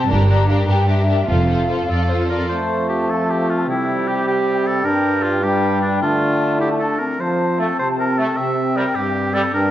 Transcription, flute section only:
0.10 A#5
0.49 F5
0.69 G5
0.88 E5
1.30 F5
2.51 A5
3.69 G5
4.86 G5
5.44 G5
6.03 A5
7.21 A5
8.38 G5
9.54 G5

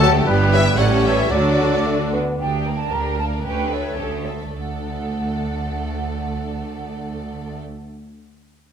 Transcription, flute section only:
0.00 F#5
0.52 C#5
0.78 D5
1.05 C#5
1.32 A4
2.40 G5
2.76 A5
2.92 A#5
3.18 A5
3.46 G5
3.72 C#5
4.56 F#5

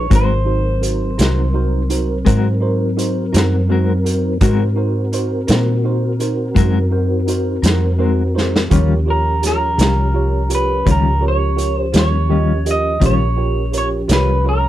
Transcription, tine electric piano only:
0.10 D#4 F#4 A#4 C5
0.45 D#4 F#4 A#4 C5
0.81 D#4 F#4 A#4 C5
1.18 D#4 F#4 A#4 C5
1.54 D#4 F#4 A#4 C5
1.89 D#4 F#4 A#4 C5
2.25 D#4 F#4 A#4 C5
2.60 D#4 F#4 A#4 C5
2.97 D#4 F#4 A#4 C5
3.32 D#4 F#4 A#4 C5
3.68 D#4 F#4 A#4 C5
4.04 D#4 F#4 A#4 C5
4.41 D#4 F#4 A#4 C5
4.76 D#4 F#4 A#4 C5
5.12 D#4 F#4 A#4 C5
5.47 D#4 F#4 A#4 C5
5.84 D#4 F#4 A#4 C5
6.20 D#4 F#4 A#4 C5
6.55 D#4 F#4 A#4 C5
6.91 D#4 F#4 A#4 C5
7.27 D#4 F#4 A#4 C5
7.63 D#4 F#4 A#4 C5
7.98 D#4 F#4 A#4 C5
8.34 D#4 F#4 A#4 C5
8.70 F4 G4 A#4 C#5
9.06 F4 G4 A#4 C#5
9.42 F4 G4 A#4 C#5
9.78 F4 G4 A#4 C#5
10.14 F4 G4 A#4 C#5
10.49 F4 G4 A#4 C#5
10.85 F4 G4 A#4 C#5
11.20 F4 G4 A#4 C#5
11.56 F4 G4 A#4 C#5
11.93 F4 G4 A#4 C#5
12.29 F4 G4 A#4 D#5
12.65 F4 G4 A#4 D#5
13.01 F4 G4 A#4 C#5
13.36 F4 G4 A#4 C#5
13.72 F4 G4 A#4 C#5
14.08 F4 G4 A#4 C#5
14.44 F4 G4 A#4 C#5

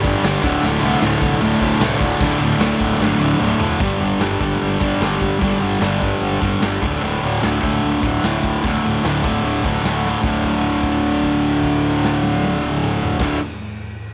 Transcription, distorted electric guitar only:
Already playing: G2
0.03 G3
0.07 D3
0.24 G2 D3 G3
0.44 D2 A2 D3
0.63 D2 A2
0.68 D3
0.81 D3
0.85 A2
1.01 D2 A2 D3
1.41 D2 A2 D3
1.61 A2 D3
1.81 D2 A2 D3
2.00 D3
2.04 A2
2.20 D2 A2 D3
2.40 A2 D3
2.59 D2 A2 D3
3.00 D2 A2 D3
3.20 D3
3.24 A2
3.39 D2 A2 D3
3.60 A2 D3
3.80 G2 D3
3.84 G3
4.00 D3 G3
4.20 G2 D3 G3
4.40 D3 G3
4.80 D3 G3
5.01 G2 D3 G3
5.39 G2 D3 G3
5.59 D3 G3
5.79 G2 D3 G3
6.01 D3 G3
6.42 D3 G3
6.61 G2 D3 G3
6.83 D2 A2 D3
7.02 D2 A2 D3
7.22 A2 D3
7.41 D2 A2 D3
7.61 A2 D3
8.02 A2 D3
8.23 D2 A2 D3
8.64 D2 A2 D3
8.84 A2 D3
9.03 D2 A2 D3
9.23 A2 D3
9.64 A2 D3
9.82 D2 A2 D3
10.21 D2 A2
10.26 D3
13.18 D2 A2
13.22 D3

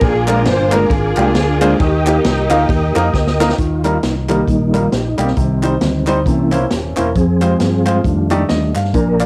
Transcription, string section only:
0.02 D4 F4 G#4
0.29 A#4
0.48 C5
0.74 A#4
0.91 D4 F4 G#4
1.81 A#3 D#4 G4

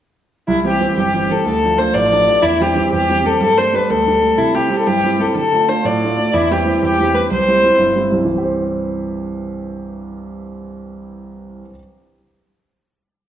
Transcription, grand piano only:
0.48 C2
0.65 E3 G3 C4
0.81 E3 G3 C4
0.97 G1
1.14 E3 G3 C4
1.30 E3 G3 C4
1.46 D2
1.64 F3 A3 D4
1.79 F3 A3 D4
1.95 A1
2.12 F3 A3 D4
2.28 F3 A3 D4
2.43 E2
2.60 E3 G3 C4
2.75 E3 G3 C4
2.93 E2
3.10 E3 G3 C4
3.25 E3 G3 C4
3.41 G2
3.57 G3 A3 D4
3.73 G3 A3 D4
3.90 D2
4.07 G3 A3 D4
4.22 G3 A3 D4
4.38 C3
4.55 G3 C4 E4
4.70 G3 C4 E4
4.87 G2
5.04 G3 C4 E4
5.20 G3 C4 E4
5.35 D3
5.53 A3 D4 F4
5.68 A3 D4 F4
5.85 A2
6.03 A3 D4 F4
6.18 A3 D4 F4
6.34 E2
6.51 G3 C4 E4
6.65 G3 C4 E4
6.82 E2
6.99 G3 C4 E4
7.14 G3 C4 E4
7.31 C2
7.48 G3 C4 E4
7.63 G3 C4 E4
7.78 G1
7.96 G3 C4 E4
8.12 C2 G3 C4 E4
8.18 G2
8.25 E3
8.32 C4
8.38 G4
8.44 C5

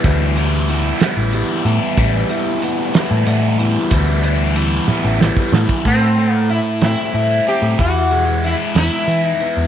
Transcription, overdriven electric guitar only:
0.05 E3 G3 B3 E4
0.38 E3 G3 B3 E4
0.70 E3 G3 B3 E4
1.02 E3 G3 B3 E4
1.33 E3 G3 B3 E4
1.66 E3 G3 B3 E4
1.98 E3 G3 B3 E4
2.31 E3 G3 B3 E4
2.63 E3 G3 B3 E4
2.95 E3 G3 B3 E4
3.27 E3 G3 B3 E4
3.59 E3 G3 B3 E4
3.91 E3 G3 B3 E4
4.24 E3 G3 B3 E4
4.56 E3 G3 B3 E4
4.89 E3 G3 B3 E4
5.20 E3 G3 B3 E4
5.53 E3 G3 B3 E4
5.86 A2
6.18 A3
6.50 E4
6.83 C4
7.15 E4
7.47 C4
7.79 E3
8.11 G#3
8.44 E4
8.76 B3
9.08 E4
9.41 B3

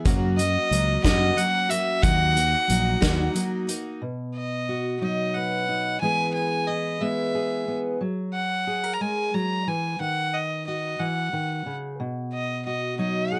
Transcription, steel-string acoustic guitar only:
4.02 B2
4.69 F#4
5.01 F#3 D#4
5.36 B4
5.69 D#4
6.02 E3 G#3 B3 E4 G#4
6.69 E4
7.01 G#3 B3
7.35 G#4
7.68 B3
8.01 F#3
8.67 G#4
8.84 A#4
9.01 G#3
9.34 F#3
9.67 E3
10.00 D#3
10.68 F#4
10.99 E3
11.33 D#3
11.66 C#3
12.00 B2
12.67 F#4
12.99 F#3 D#4
13.32 G#4

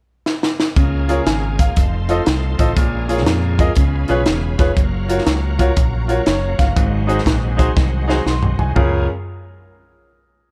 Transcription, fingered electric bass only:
0.76 C#2
1.26 G#1
1.77 F1
2.27 C2
2.59 A1
2.77 A#1
3.27 F2
3.77 C#2
4.10 B1
4.27 E1
4.59 F1
4.77 F#1
5.27 C#2
5.77 A#1
6.27 F#1
6.59 G1
6.76 G#1
7.26 A#1
7.77 C2
8.26 B1
8.59 C2
8.76 C#2

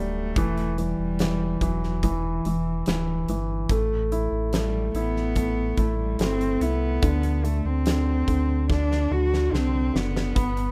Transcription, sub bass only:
Already playing: D1
0.36 E1
0.98 E1
1.61 E1
2.45 E1
2.87 D1
3.28 G1
3.70 A1
4.31 A1
4.94 A1
5.77 A1
6.19 G1
6.60 C2
7.03 D2
7.65 D2
8.28 D2
9.11 D2
9.52 C2
9.94 F#1
10.36 G1

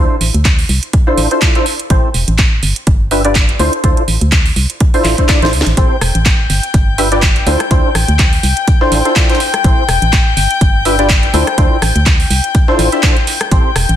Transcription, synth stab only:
Already playing: D4 E4 F4 A4 C5
1.07 D4 E4 F4 A4 C5
1.31 D4 E4 F4 A4 C5
1.42 E4 F4 A4
1.55 D4 E4 F4 A4 C5
1.90 C4 E4 G4 A4 C5
3.11 D4 F4 G4 B4 E5
3.25 D4 F4 G4 B4 D5
3.60 D4 E4 F4 A4 C5
3.84 D4 E4 F4 A4 C5
4.94 D4 E4 F4 A4 C5
5.18 D4 E4 F4 A4 C5
5.29 D4 E4 F4 A4 D5
5.42 D4 E4 F4 A4 C5
5.77 C4 E4 G4 A4 C5
6.98 D4 F4 G4 B4 E5
7.12 D4 F4 G4 B4 D5
7.47 D4 E4 F4 A4 C5
7.71 D4 E4 F4 A4 C5
8.81 D4 E4 F4 A4 C5
9.05 D4 E4 F4 A4 C5
9.16 D4 E4 F4 D5
9.30 D4 E4 F4 A4 C5
9.64 C4 E4 G4 A4 C5
10.85 D4 F4 G4 B4 E5
10.99 D4 F4 G4 B4 D5
11.34 D4 E4 F4 A4 C5
11.58 D4 E4 F4 A4 C5
12.68 D4 E4 F4 A4 C5
12.92 D4 E4 F4 A4 E5
13.03 D4 E4 F4 A4 C5
13.51 C4 E4 G4 A4 C5

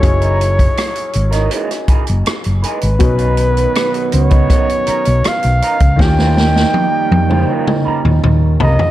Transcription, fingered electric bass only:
0.03 F#1
1.15 G#1
1.89 muted fingered electric bass stroke
2.09 F#1
2.46 F#1
2.83 G#1
3.01 B1
4.14 C#2
4.88 muted fingered electric bass stroke
5.07 B1
5.26 muted fingered electric bass stroke
5.45 B1
5.81 C#2
6.00 D#2
7.11 F2
7.87 muted fingered electric bass stroke
8.05 D#2
8.24 D#2
8.62 C2

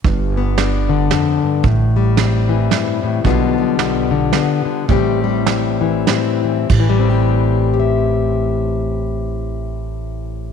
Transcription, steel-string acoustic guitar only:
0.05 G2
0.37 B3
0.58 D4
0.89 D3
1.11 F2
1.43 G2
1.64 A2
1.96 G3
2.17 C4
2.49 E3
2.71 G2
3.03 A2
3.24 B2 D3 G3 B3 F4
3.58 G3
3.79 B3
4.11 D3
4.34 B3
4.65 D3
4.88 A2 E3 G3 C4 G4
5.24 G3
5.48 C4
5.81 E3
6.08 C4
6.44 E3
6.69 A2
6.80 E3
6.89 G3
6.99 C4
7.10 G4
7.74 G4
7.80 E5

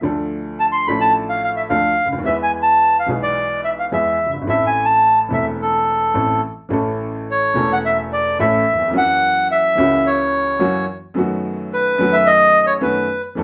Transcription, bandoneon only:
0.60 A5
0.72 C6
0.87 B5
1.01 A5
1.29 F5
1.44 F5
1.56 E5
1.70 F5
2.26 E5
2.43 G#5
2.62 A5
2.99 F5
3.22 D5
3.65 E5
3.79 F5
3.93 E5
4.49 E5
4.67 G#5
4.85 A5
5.34 E5
5.62 A4
7.31 C#5
7.73 F#5
7.86 E5
8.13 D5
8.40 E5
8.97 F#5
9.52 E5
10.07 C#5
11.73 B4
12.13 E5
12.26 D#5
12.67 C#5
12.83 B4

